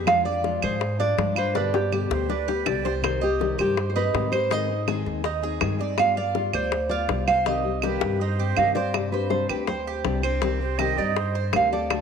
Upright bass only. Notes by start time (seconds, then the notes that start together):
Already playing: F2
0.63 G#2
1.18 G2
2.10 D2
2.66 C2
3.58 G2
4.14 G#2
5.06 D#2
5.62 G2
6.53 D2
7.08 C2
8.02 G2
8.57 G2
9.49 D2
10.05 C2
10.98 G2
11.53 D2